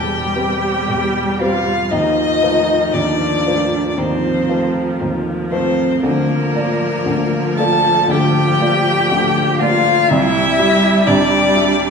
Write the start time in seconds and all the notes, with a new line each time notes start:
Already playing: E1 E2 G3 C4 G4 C5 G5
0.35 C4 G4 C5
0.88 E1 E2
1.40 C4 F4 G4 C5 F5
1.91 D#2 D#3 F3 D#4 D#5
2.42 A3 F4 C5
2.93 D#2 D#3 D4 D5
3.46 A3 F4 C5
3.89 D5
3.97 D#2 D#3 F3 C4 C5
4.49 A3 F4 C5
5.01 D#2 D#3
5.51 A3 C4 F4 C5
6.02 D2 D3 F3 A#3 A#4
6.54 A#3 F4 D5
7.06 D2 D3
7.57 A#3 F4 A4 D5 A5
8.08 D2 D3 G4 G5
8.60 A#3 F4 D5
9.12 D2 D3
9.59 A#3 F4 D5 F5
10.09 C2 C3 G3 E4 E5
10.58 G3 G4 E5
11.07 C2 C3 D4 D5
11.56 G3 G4 E5